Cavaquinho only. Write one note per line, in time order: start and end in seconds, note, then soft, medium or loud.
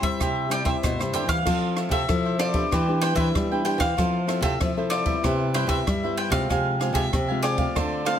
0.03 0.19 G4 soft
0.03 0.19 C5 soft
0.03 0.18 E5 soft
0.20 0.49 E4 medium
0.20 0.50 G4 medium
0.20 0.50 C5 medium
0.20 0.51 E5 medium
0.50 0.64 E4 medium
0.50 0.64 G4 soft
0.50 0.65 C5 soft
0.50 0.65 E5 medium
0.65 0.76 E4 medium
0.65 0.76 G4 medium
0.65 0.76 C5 medium
0.65 0.76 E5 medium
0.99 1.12 G4 soft
0.99 1.13 C5 soft
0.99 1.14 E5 soft
1.13 1.29 E4 medium
1.13 1.28 G4 medium
1.13 1.27 C5 medium
1.13 1.26 E5 medium
1.27 1.44 G4 soft
1.27 1.44 C5 soft
1.27 1.44 E5 soft
1.45 1.75 F4 medium
1.45 1.76 A4 medium
1.45 1.76 C5 medium
1.77 1.90 F4 soft
1.77 1.91 A4 soft
1.77 1.91 C5 soft
1.77 1.91 E5 medium
1.92 2.02 F4 medium
1.92 2.02 A4 medium
1.92 2.02 C5 medium
1.92 2.02 E5 medium
2.25 2.39 A4 soft
2.25 2.39 C5 soft
2.25 2.39 E5 soft
2.39 2.54 F4 medium
2.39 2.54 A4 medium
2.39 2.54 C5 medium
2.39 2.53 E5 medium
2.54 2.71 A4 soft
2.54 2.70 C5 soft
2.54 2.70 E5 soft
2.71 3.00 E4 medium
2.71 3.02 B4 medium
2.71 3.01 C5 medium
2.71 3.03 G5 medium
3.02 3.16 E4 medium
3.02 3.17 B4 medium
3.02 3.17 C5 medium
3.02 3.17 G5 medium
3.17 3.27 E4 medium
3.17 3.28 B4 medium
3.17 3.28 C5 medium
3.17 3.28 G5 medium
3.52 3.65 B4 soft
3.52 3.65 C5 soft
3.52 3.66 G5 medium
3.65 3.80 E4 medium
3.65 3.78 B4 medium
3.65 3.79 C5 medium
3.65 3.77 G5 medium
3.78 3.95 B4 soft
3.78 3.96 C5 soft
3.78 3.95 G5 soft
3.97 4.26 F4 medium
3.97 4.26 A4 medium
3.97 4.27 C5 medium
4.27 4.41 F4 soft
4.27 4.42 A4 soft
4.27 4.42 C5 soft
4.27 4.42 E5 soft
4.42 4.53 F4 medium
4.42 4.53 A4 medium
4.42 4.53 C5 medium
4.42 4.53 E5 medium
4.77 4.90 A4 soft
4.77 4.91 C5 soft
4.77 4.91 E5 soft
4.91 5.06 F4 medium
4.91 5.06 A4 medium
4.91 5.05 C5 medium
4.91 5.04 E5 medium
5.06 5.22 A4 soft
5.06 5.22 C5 soft
5.06 5.21 E5 soft
5.23 5.53 E4 medium
5.23 5.54 B4 medium
5.23 5.54 C5 medium
5.23 5.55 E5 medium
5.55 5.67 E4 medium
5.55 5.68 B4 medium
5.55 5.67 C5 medium
5.55 5.68 E5 medium
5.69 5.79 E4 medium
5.69 5.79 B4 medium
5.69 5.79 C5 medium
5.69 5.79 E5 medium
6.03 6.17 B4 soft
6.03 6.17 C5 soft
6.03 6.17 E5 soft
6.17 6.32 E4 soft
6.17 6.31 B4 medium
6.17 6.32 C5 soft
6.17 6.30 E5 medium
6.31 6.48 B4 soft
6.31 6.48 C5 soft
6.31 6.47 E5 soft
6.49 6.78 G#4 medium
6.49 6.80 F5 medium
6.49 6.80 G#5 medium
6.80 6.93 G4 soft
6.80 6.92 G#4 soft
6.80 6.93 F5 medium
6.80 6.94 G#5 medium
6.94 7.05 G4 medium
6.94 7.04 G#4 medium
6.94 7.04 F5 medium
6.94 7.05 G#5 medium
7.28 7.42 G4 soft
7.28 7.42 F5 soft
7.28 7.43 G#5 soft
7.42 7.57 G4 medium
7.42 7.58 G#4 medium
7.42 7.57 F5 medium
7.42 7.56 G#5 medium
7.57 7.74 G4 soft
7.57 7.73 F5 soft
7.57 7.73 G#5 soft
7.75 8.04 F4 medium
7.75 8.04 A4 medium
7.75 8.05 C5 medium
7.75 8.05 D5 medium
8.05 8.18 F4 medium
8.05 8.18 A4 medium
8.05 8.19 C5 medium
8.05 8.19 D5 medium